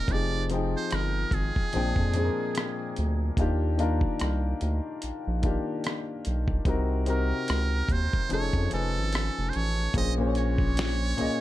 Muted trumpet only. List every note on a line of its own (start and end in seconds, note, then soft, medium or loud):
0.00 0.13 A#4 medium
0.12 0.45 D5 loud
0.77 0.96 C5 medium
0.95 1.36 A#4 medium
1.34 2.97 G#4 medium
7.10 7.94 A#4 medium
7.92 8.32 C5 medium
8.33 8.70 C#5 medium
8.74 9.51 A4 medium
9.49 9.58 C5 medium
9.56 9.96 C#5 medium
9.98 10.14 D#5 loud
10.38 11.41 C#5 loud